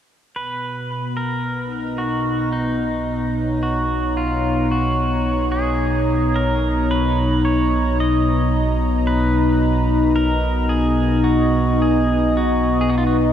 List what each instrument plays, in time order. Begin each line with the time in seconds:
0.35 analog synth bass B1, analog synth pad B2, pedal steel guitar B4
0.94 analog synth pad B3
1.17 pedal steel guitar A#4
1.40 analog synth pad A#5
1.64 analog synth pad D#4
1.98 pedal steel guitar F#4
2.52 pedal steel guitar D#4
3.31 analog synth pad C#5
3.63 pedal steel guitar F#4
4.17 pedal steel guitar F4
4.71 pedal steel guitar F#4
5.52 pedal steel guitar G#4
6.36 pedal steel guitar A#4
6.91 pedal steel guitar B4
7.45 pedal steel guitar C#5
8.00 pedal steel guitar D#5
9.07 pedal steel guitar B4
9.91 analog synth pad D#5
10.16 pedal steel guitar A#4
10.69 pedal steel guitar G#4
11.24 pedal steel guitar F#4
11.82 pedal steel guitar G#4
12.37 pedal steel guitar F#4
12.81 pedal steel guitar G#4
12.89 pedal steel guitar F#4
12.98 pedal steel guitar F4
13.07 pedal steel guitar F#4